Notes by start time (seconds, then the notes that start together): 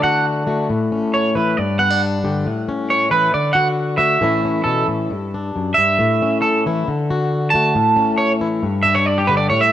Already playing: D3 A3 D4
0.03 F#4 F#5
0.47 A3 F#4
0.69 A2
0.92 C#4
1.14 C#5
1.35 E3 E4 B4
1.57 G2 D5
1.79 B3 F#5
1.91 D4
2.24 D3 G4
2.46 A2
2.69 C#4
2.90 C#5
3.11 E3 E4 B4
3.34 D3 D5
3.53 F#4 F#5
3.98 A3 F#4 E5
4.21 A2 E3 A3 C#4 E4
4.45 C#4
4.64 B2 A4
4.88 A2
5.10 G2
5.34 D4
5.55 F#2
5.74 G2 E5
5.99 A2
6.22 C#4
6.42 A4
6.66 E3 E4
6.88 D3
7.10 F#4
7.50 A3 A5
7.55 F#4
7.75 A2
7.96 C#4
8.17 C#5
8.41 E3 E4
8.62 G2
8.82 D4 E5
8.95 C#5
9.06 D5
9.18 G4
9.27 D3 G4 B4
9.37 D5
9.50 A2 C#5
9.61 E5